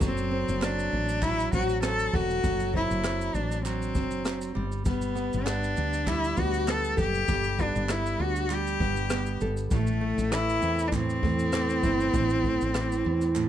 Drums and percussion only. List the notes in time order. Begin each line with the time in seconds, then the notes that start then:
0.01 kick, shaker
0.17 shaker
0.49 shaker
0.62 cross-stick, clap, shaker
0.79 shaker
1.09 shaker
1.22 kick, clap, shaker
1.40 shaker
1.53 kick, shaker
1.69 shaker
1.83 cross-stick, clap, shaker
1.99 shaker
2.14 kick
2.30 shaker
2.44 kick, shaker
2.60 shaker
2.74 kick
2.91 shaker
3.04 cross-stick, clap, shaker
3.21 shaker
3.35 shaker
3.52 cross-stick, shaker
3.65 clap, shaker
3.82 shaker
3.95 kick, shaker
4.11 shaker
4.25 cross-stick, clap, shaker
4.41 shaker
4.72 shaker
4.85 kick, shaker
5.02 shaker
5.16 shaker
5.33 shaker
5.47 cross-stick, clap, shaker
5.64 shaker
5.77 shaker
5.93 cross-stick, shaker
6.07 kick, clap, shaker
6.24 shaker
6.37 kick, shaker
6.54 shaker
6.68 cross-stick, clap, shaker
6.84 shaker
6.98 kick, shaker
7.15 shaker
7.28 kick, shaker
7.44 shaker
7.59 kick, shaker
7.76 shaker
7.89 cross-stick, clap, shaker
8.06 shaker
8.36 shaker
8.50 clap, shaker
8.67 shaker
8.80 kick
8.96 shaker
9.10 cross-stick, clap, shaker
9.26 shaker
9.41 shaker
9.57 shaker
9.71 kick, shaker
9.87 shaker
10.18 shaker
10.32 cross-stick, clap, shaker
10.49 shaker
10.62 shaker
10.79 shaker
10.92 kick, clap, shaker
11.10 shaker
11.23 kick
11.39 shaker
11.52 cross-stick, clap, shaker
11.69 shaker
11.83 kick, shaker
12.00 shaker
12.14 kick, shaker
12.30 shaker
12.44 kick
12.61 shaker
12.75 cross-stick, clap, shaker
12.92 shaker
13.21 cross-stick, shaker
13.35 clap, shaker